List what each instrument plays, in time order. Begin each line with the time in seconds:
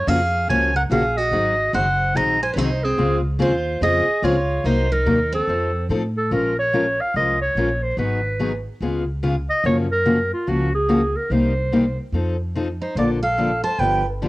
0.07 upright bass F2, steel-string acoustic guitar C#3 F3 A#3 C#4 F#4 G#4, clarinet F5
0.48 upright bass C#2, steel-string acoustic guitar C#3 F3 A#3 C#4 F#4 C#5, clarinet G#5
0.76 steel-string acoustic guitar A#4, clarinet F#5
0.90 upright bass A#1, steel-string acoustic guitar C#3 F3 A#3 C#4 F#4 G#4, clarinet F5
1.17 steel-string acoustic guitar F#4, clarinet D#5
1.31 upright bass G#1, steel-string acoustic guitar D#3 F#3 C4 D#4 G#4
1.73 upright bass F#1, steel-string acoustic guitar D#3 F#3 C4 D#4 G#4 C5, clarinet F#5
2.15 upright bass A#1, steel-string acoustic guitar D#3 F#3 C4 D#4 G#4 D#5, clarinet A#5
2.43 steel-string acoustic guitar C5, clarinet G#5
2.53 upright bass C2, steel-string acoustic guitar D#3 C#4, clarinet B4
2.57 steel-string acoustic guitar F#3 C4 D#4 G#4, clarinet C5
2.84 steel-string acoustic guitar C4, clarinet G#4
2.97 upright bass C#2, steel-string acoustic guitar C#3 G#3 C4 F4 G#4
3.39 upright bass D#2, steel-string acoustic guitar C#3 G#3 C4 F4 G#4, clarinet C5
3.81 upright bass F2, steel-string acoustic guitar C#3 G#3 C4 F4 G#4, clarinet D#5
4.08 muted upright bass stroke
4.22 upright bass C#2, steel-string acoustic guitar C#3 G#3 C4 F4 G#4, clarinet C#5
4.64 upright bass C2, steel-string acoustic guitar C3 F#3 A#3 D#4 A#4, clarinet C5
4.92 steel-string acoustic guitar D#4, clarinet A#4
5.06 upright bass D#2, steel-string acoustic guitar C3 F#3 A#3 D#4 A#4
5.33 steel-string acoustic guitar C4, clarinet A4
5.47 upright bass F2, steel-string acoustic guitar F3 C4 D#4 A4
5.89 upright bass A2, steel-string acoustic guitar F3 C4 D#4 A4
6.18 clarinet A4
6.31 upright bass A#1, steel-string acoustic guitar F3 G#3 C#4 F4 A#4, clarinet A#4
6.59 clarinet C#5
6.73 steel-string acoustic guitar F3 G#3 C#4 F4 A#4
7.01 clarinet F5
7.14 upright bass C2, steel-string acoustic guitar F3 G#3 C#4 F4 A#4, clarinet D#5
7.41 clarinet C#5
7.55 upright bass A#1, steel-string acoustic guitar F3 G#3 C#4 F4 A#4
7.83 clarinet C5
7.97 upright bass G#1, steel-string acoustic guitar D#3 F#3 B3 D#4 G#4, clarinet B4
8.39 steel-string acoustic guitar D#3 F#3 B3 D#4 G#4
8.80 upright bass C#2, steel-string acoustic guitar C#3 G#3 B3 F4 G#4
9.23 steel-string acoustic guitar C#3 G#3 B3 F4 G#4
9.50 clarinet D#5
9.64 upright bass F#2, steel-string acoustic guitar C#3 F3 A#3 C#4 F#4, clarinet C#5
9.92 clarinet A#4
10.05 steel-string acoustic guitar C#3 F3 A#3 C#4 F#4
10.34 clarinet F4
10.47 upright bass C#2, steel-string acoustic guitar C#3 F3 A#3 C#4 F#4, clarinet F#4
10.75 clarinet G#4
10.89 steel-string acoustic guitar C#3 F3 A#3 C#4 F#4
11.17 clarinet A#4
11.30 upright bass C2, steel-string acoustic guitar C3 G3 A#3 D#4 G4, clarinet C5
11.72 steel-string acoustic guitar C3 G3 A#3 D#4 G4
12.12 upright bass F2, steel-string acoustic guitar F3 C4 D#4 A4
12.55 steel-string acoustic guitar F3 C4 D#4 A4
12.82 steel-string acoustic guitar D#4, clarinet C5
12.95 upright bass A#1, steel-string acoustic guitar D3 F3 A#3 D4 F4 A4, clarinet D5
13.23 steel-string acoustic guitar A4, clarinet F5
13.38 steel-string acoustic guitar D3 F3 A#3 D4 A4
13.64 steel-string acoustic guitar C5, clarinet A5
13.79 upright bass G1, steel-string acoustic guitar D3 F3 B3 D4 G4 B4, clarinet G5
14.22 steel-string acoustic guitar D3 F3 B3 D4 G4